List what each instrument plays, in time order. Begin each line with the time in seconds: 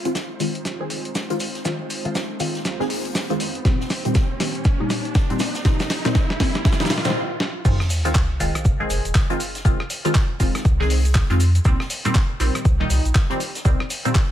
Already playing: analog synth pad G#3 C4 D#4 F4 C5, riser
0.05 synth stab D#3 G#3 C4 F4, closed hi-hat
0.15 snare, closed hi-hat, shaker
0.40 analog synth bass D#1, synth stab D#3 G#3 C4 F4, open hi-hat, shaker
0.55 closed hi-hat
0.65 analog synth bass F1, snare, closed hi-hat, shaker
0.80 synth stab D#3 G#3 C4 G#4
0.90 analog synth bass F1, open hi-hat, shaker
1.05 analog synth bass D#1, closed hi-hat
1.15 snare, closed hi-hat, shaker
1.30 synth stab D#3 G#3 C4 F4, closed hi-hat
1.40 open hi-hat, shaker
1.55 snare, closed hi-hat
1.65 analog synth bass F1, synth stab D#3 G#3 C4 F4, snare, closed hi-hat, shaker
1.90 open hi-hat, shaker
2.05 synth stab D#3 G#3 C4 F4, closed hi-hat
2.15 snare, closed hi-hat, shaker
2.40 analog synth bass D#1, synth stab D#3 G#3 C4 F4, open hi-hat, shaker
2.55 snare, closed hi-hat
2.65 analog synth bass C2, snare, closed hi-hat, shaker
2.80 synth stab D#3 G#3 C4 G#4, snare
2.90 open hi-hat
3.05 closed hi-hat
3.15 snare, closed hi-hat, shaker
3.30 analog synth bass F2, synth stab D#3 G#3 C4 F4, closed hi-hat
3.40 open hi-hat, shaker
3.55 closed hi-hat
3.65 synth stab A#2 D#3 G3 C4, analog synth pad A#3 G4, kick, snare, closed hi-hat, shaker
3.80 snare
3.90 snare, open hi-hat, shaker
4.05 synth stab A#2 D#3 G3 C4, closed hi-hat
4.15 kick, snare, closed hi-hat, shaker
4.40 synth stab A#2 D#3 G3 C4, snare, open hi-hat, shaker
4.55 closed hi-hat
4.64 kick, snare, closed hi-hat, shaker
4.80 synth stab A#2 D#3 G3 D#4
4.90 analog synth bass C2, snare, open hi-hat, shaker
5.05 closed hi-hat
5.15 kick, snare, closed hi-hat, shaker
5.30 synth stab A#2 D#3 G3 C4, closed hi-hat
5.39 snare, open hi-hat, shaker
5.55 snare, closed hi-hat, shaker
5.65 synth stab A#2 D#3 G3 C4, analog synth pad A4, kick, snare, closed hi-hat, shaker
5.80 snare, shaker
5.90 snare, open hi-hat, shaker
6.05 synth stab A#2 D#3 G3 C4, snare, closed hi-hat, shaker
6.15 kick, snare, closed hi-hat, shaker
6.30 snare, closed hi-hat
6.40 synth stab A#2 D#3 G3 C4, kick, snare, open hi-hat
6.55 snare, closed hi-hat
6.65 kick, snare, closed hi-hat, shaker
6.72 snare, shaker
6.80 synth stab A#2 D#3 G3 D#4, snare, shaker
6.85 snare, shaker
6.90 snare, open hi-hat, shaker
6.98 snare
7.05 synth stab A#2 D#3 G3 C4, snare, closed hi-hat, shaker
7.10 snare
7.40 snare
7.65 analog synth bass F1, synth stab D#3 G#3 C4 F4, kick, closed hi-hat, crash, sub drop, cabasa, shaker
7.80 cross-stick, snare
7.89 open hi-hat, cabasa, shaker
8.05 synth stab D#3 G#3 C4 F4, closed hi-hat, cabasa
8.15 kick, snare, clap, closed hi-hat, cabasa, shaker
8.40 analog synth bass D#1, synth stab D#3 G#3 C4 F4, open hi-hat, cabasa, shaker
8.55 cross-stick, closed hi-hat, cabasa
8.65 analog synth bass F1, kick, closed hi-hat, cabasa, shaker
8.80 synth stab D#3 G#3 C4 G#4
8.90 analog synth bass F1, open hi-hat, cabasa, shaker
9.05 analog synth bass D#1, closed hi-hat, cabasa
9.15 kick, snare, clap, closed hi-hat, cabasa, shaker
9.30 synth stab D#3 G#3 C4 F4, closed hi-hat
9.40 open hi-hat, cabasa, shaker
9.55 snare, closed hi-hat, cabasa
9.65 analog synth bass F1, synth stab D#3 G#3 C4 F4, kick, closed hi-hat, cabasa, shaker
9.80 cross-stick
9.90 open hi-hat, cabasa, shaker
10.05 synth stab D#3 G#3 C4 F4, closed hi-hat, cabasa
10.15 kick, snare, clap, closed hi-hat, cabasa, shaker
10.40 analog synth bass D#1, synth stab D#3 G#3 C4 F4, kick, open hi-hat, cabasa, shaker
10.55 cross-stick, snare, closed hi-hat, cabasa
10.65 analog synth bass C2, kick, closed hi-hat, cabasa, shaker
10.80 synth stab D#3 G#3 C4 G#4, snare
10.90 open hi-hat, cabasa
11.05 closed hi-hat, cabasa
11.15 kick, snare, clap, closed hi-hat, cabasa, shaker
11.30 analog synth bass F2, synth stab D#3 G#3 C4 F4, closed hi-hat
11.40 open hi-hat, cabasa, shaker
11.55 closed hi-hat, cabasa
11.65 analog synth bass C2, synth stab A#2 D#3 G3 C4, kick, closed hi-hat, cabasa, shaker
11.80 cross-stick, snare
11.90 open hi-hat, cabasa, shaker
12.05 synth stab A#2 D#3 G3 C4, closed hi-hat, cabasa
12.15 kick, snare, clap, closed hi-hat, cabasa, shaker
12.40 analog synth bass A#1, synth stab A#2 D#3 G3 C4, open hi-hat, cabasa, shaker
12.55 cross-stick, closed hi-hat, cabasa
12.65 analog synth bass C2, kick, closed hi-hat, cabasa, shaker
12.80 synth stab A#2 D#3 G3 D#4
12.90 analog synth bass C2, open hi-hat, cabasa, shaker
13.05 analog synth bass A#1, closed hi-hat, cabasa
13.15 kick, snare, clap, closed hi-hat, cabasa, shaker
13.30 synth stab A#2 D#3 G3 C4, closed hi-hat
13.40 open hi-hat, cabasa, shaker
13.55 snare, closed hi-hat, cabasa
13.65 analog synth bass C2, synth stab A#2 D#3 G3 C4, kick, closed hi-hat, cabasa, shaker
13.80 cross-stick
13.90 open hi-hat, cabasa, shaker
14.05 synth stab A#2 D#3 G3 C4, closed hi-hat, cabasa
14.15 kick, snare, clap, closed hi-hat, cabasa, shaker